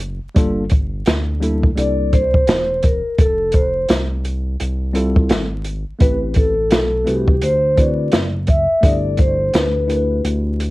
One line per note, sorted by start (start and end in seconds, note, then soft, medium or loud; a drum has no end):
0.00 0.20 F#1 medium
0.00 closed hi-hat medium
0.22 0.28 F#1 soft
0.34 1.03 G1 loud
0.34 0.62 G3 medium
0.34 0.63 A#3 medium
0.34 0.63 D4 medium
0.34 0.63 F4 medium
0.34 0.64 A4 medium
0.34 kick loud
0.34 closed hi-hat medium
0.70 kick medium
0.70 closed hi-hat medium
1.06 1.74 D2 medium
1.06 snare loud
1.06 closed hi-hat medium
1.40 1.68 G3 medium
1.40 1.69 A#3 medium
1.40 1.69 D4 medium
1.40 1.69 E4 medium
1.40 1.70 A4 medium
1.40 closed hi-hat medium
1.63 kick medium
1.75 2.44 C2 medium
1.75 2.20 G3 medium
1.75 2.21 A#3 medium
1.75 2.21 D4 medium
1.75 2.21 E4 medium
1.75 2.22 A4 medium
1.75 2.14 D5 loud
1.75 closed hi-hat medium
2.13 2.79 C5 loud
2.13 kick medium
2.13 closed hi-hat medium
2.34 kick medium
2.47 3.02 E1 loud
2.47 snare loud
2.47 closed hi-hat medium
2.83 3.20 A#4 medium
2.83 kick medium
2.83 closed hi-hat medium
3.05 3.10 E1 soft
3.18 3.86 F1 loud
3.18 3.55 A4 loud
3.18 kick loud
3.18 closed hi-hat medium
3.52 3.87 C5 medium
3.52 kick medium
3.52 closed hi-hat medium
3.89 4.56 C2 medium
3.89 snare loud
3.89 closed hi-hat medium
4.25 closed hi-hat medium
4.60 5.27 C2 medium
4.60 closed hi-hat medium
4.93 5.47 G3 medium
4.93 5.47 C4 medium
4.93 5.47 E4 medium
4.93 5.48 F4 medium
4.93 5.48 A4 medium
4.93 closed hi-hat medium
5.16 kick medium
5.29 5.84 G#1 loud
5.29 snare loud
5.29 closed hi-hat medium
5.64 closed hi-hat medium
5.88 5.93 G#1 soft
5.99 6.74 A1 loud
5.99 6.52 A3 medium
5.99 6.53 C4 medium
5.99 6.53 E4 medium
5.99 6.53 G4 medium
5.99 6.17 B4 loud
5.99 6.54 B4 medium
5.99 kick loud
5.99 closed hi-hat medium
6.34 7.09 A4 medium
6.34 kick medium
6.34 closed hi-hat medium
6.71 7.05 B1 loud
6.71 snare loud
6.71 closed hi-hat medium
7.04 7.41 C2 medium
7.04 7.33 A3 medium
7.04 7.33 C4 medium
7.04 7.33 E4 medium
7.04 7.34 F#4 medium
7.04 7.40 G4 medium
7.04 7.34 B4 medium
7.04 closed hi-hat medium
7.28 kick medium
7.42 8.10 D2 loud
7.42 7.79 C5 loud
7.42 closed hi-hat medium
7.76 8.21 A3 medium
7.76 8.21 C4 medium
7.76 8.21 E4 medium
7.76 8.22 F#4 medium
7.76 8.22 B4 medium
7.76 8.11 D5 medium
7.76 kick medium
7.76 closed hi-hat medium
8.12 8.67 F#1 loud
8.12 snare loud
8.12 closed hi-hat medium
8.47 8.85 E5 medium
8.47 kick medium
8.47 closed hi-hat medium
8.70 8.75 F#1 soft
8.81 9.50 G1 loud
8.81 9.83 A3 medium
8.81 9.83 D4 medium
8.81 9.83 E4 medium
8.81 9.84 G4 medium
8.81 9.84 A4 medium
8.81 9.17 D5 loud
8.81 kick loud
8.81 closed hi-hat medium
9.17 9.52 C5 medium
9.17 kick medium
9.17 closed hi-hat medium
9.54 10.21 D2 medium
9.54 10.21 B4 medium
9.54 snare loud
9.54 closed hi-hat medium
9.87 10.71 A3 medium
9.87 10.71 D4 medium
9.87 10.71 E4 medium
9.87 10.71 G4 medium
9.87 9.97 A#4 medium
9.87 closed hi-hat medium
9.96 10.71 B4 medium
10.24 10.71 D2 medium
10.24 closed hi-hat medium
10.60 closed hi-hat medium